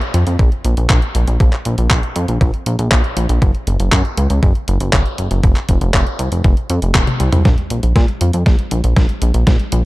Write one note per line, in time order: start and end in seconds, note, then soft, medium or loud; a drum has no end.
0.02 closed hi-hat soft
0.14 0.24 F2 medium
0.14 closed hi-hat medium
0.27 0.37 F2 medium
0.27 closed hi-hat soft
0.39 0.49 A#1 loud
0.39 kick loud
0.39 closed hi-hat soft
0.52 closed hi-hat soft
0.64 0.75 A#1 medium
0.64 closed hi-hat medium
0.77 0.87 A#1 medium
0.77 closed hi-hat soft
0.90 1.00 A#1 loud
0.90 kick loud
0.90 clap loud
0.90 closed hi-hat soft
1.02 closed hi-hat soft
1.15 1.25 A#1 medium
1.15 closed hi-hat medium
1.27 1.38 A#1 medium
1.27 closed hi-hat soft
1.40 1.50 A#1 loud
1.40 kick loud
1.40 closed hi-hat soft
1.53 clap soft
1.53 closed hi-hat soft
1.65 1.75 A#1 medium
1.65 closed hi-hat medium
1.78 1.88 A#1 medium
1.78 closed hi-hat medium
1.90 2.01 A#1 loud
1.90 kick loud
1.90 clap loud
1.90 closed hi-hat medium
2.03 closed hi-hat soft
2.16 2.26 F2 medium
2.16 closed hi-hat medium
2.28 2.38 A#1 medium
2.28 closed hi-hat soft
2.41 2.51 A#1 loud
2.41 kick loud
2.41 closed hi-hat soft
2.54 closed hi-hat soft
2.66 2.76 A#1 medium
2.66 closed hi-hat medium
2.79 2.89 A#1 medium
2.79 closed hi-hat medium
2.91 3.01 A#1 loud
2.91 kick loud
2.91 clap loud
2.91 closed hi-hat soft
3.04 closed hi-hat soft
3.17 3.27 A#1 medium
3.17 closed hi-hat medium
3.29 3.39 A#1 medium
3.29 closed hi-hat medium
3.42 3.52 F#1 loud
3.42 kick loud
3.42 closed hi-hat medium
3.55 closed hi-hat soft
3.67 3.77 F#1 medium
3.67 closed hi-hat medium
3.80 3.90 F#1 medium
3.80 closed hi-hat medium
3.92 4.02 F#2 loud
3.92 kick loud
3.92 clap loud
3.92 closed hi-hat medium
4.05 closed hi-hat soft
4.17 4.28 C#2 medium
4.17 closed hi-hat loud
4.30 4.40 C#2 medium
4.30 closed hi-hat medium
4.43 4.53 F#1 loud
4.43 kick loud
4.43 closed hi-hat medium
4.55 closed hi-hat soft
4.68 4.78 F#1 medium
4.68 closed hi-hat medium
4.80 4.91 F#1 medium
4.80 closed hi-hat medium
4.93 5.03 F#1 loud
4.93 kick loud
4.93 clap loud
4.93 closed hi-hat medium
5.06 closed hi-hat soft
5.18 5.28 F#1 medium
5.18 closed hi-hat medium
5.31 5.41 F#1 medium
5.31 closed hi-hat medium
5.43 5.54 F1 loud
5.43 kick loud
5.43 closed hi-hat medium
5.56 clap soft
5.56 closed hi-hat soft
5.69 5.79 F1 medium
5.69 kick medium
5.69 closed hi-hat loud
5.81 5.91 F1 medium
5.81 closed hi-hat medium
5.94 6.04 F1 loud
5.94 kick loud
5.94 clap loud
5.94 closed hi-hat medium
6.07 closed hi-hat soft
6.19 6.29 C2 medium
6.19 closed hi-hat medium
6.32 6.42 F1 medium
6.32 closed hi-hat medium
6.44 6.54 F1 loud
6.44 kick loud
6.44 closed hi-hat medium
6.57 closed hi-hat soft
6.70 6.80 F2 medium
6.70 closed hi-hat medium
6.82 6.92 F1 medium
6.82 closed hi-hat medium
6.95 7.05 D#1 loud
6.95 kick loud
6.95 clap loud
6.95 closed hi-hat medium
6.95 high tom medium
7.07 closed hi-hat soft
7.07 high tom medium
7.20 7.30 C2 medium
7.20 closed hi-hat medium
7.32 7.43 C2 medium
7.32 closed hi-hat medium
7.32 mid tom medium
7.45 7.55 A#1 loud
7.45 kick loud
7.45 snare soft
7.45 closed hi-hat medium
7.58 closed hi-hat soft
7.70 7.81 A#1 medium
7.70 closed hi-hat medium
7.83 7.93 A#1 medium
7.83 closed hi-hat medium
7.96 8.06 A#2 loud
7.96 kick loud
7.96 snare soft
7.96 closed hi-hat medium
8.08 closed hi-hat soft
8.21 8.31 F2 medium
8.21 closed hi-hat medium
8.33 8.44 F2 medium
8.33 closed hi-hat medium
8.46 8.56 A#1 loud
8.46 kick loud
8.46 snare soft
8.46 closed hi-hat medium
8.59 closed hi-hat soft
8.71 8.81 A#1 medium
8.71 closed hi-hat medium
8.84 8.94 A#1 medium
8.84 closed hi-hat medium
8.96 9.07 A#1 loud
8.96 kick loud
8.96 snare medium
8.96 closed hi-hat medium
9.09 closed hi-hat soft
9.22 9.32 A#1 medium
9.22 closed hi-hat medium
9.34 9.44 A#1 medium
9.34 closed hi-hat medium
9.47 9.57 A#1 loud
9.47 kick loud
9.47 snare medium
9.47 closed hi-hat medium
9.60 closed hi-hat soft
9.72 9.82 A#1 medium
9.72 closed hi-hat medium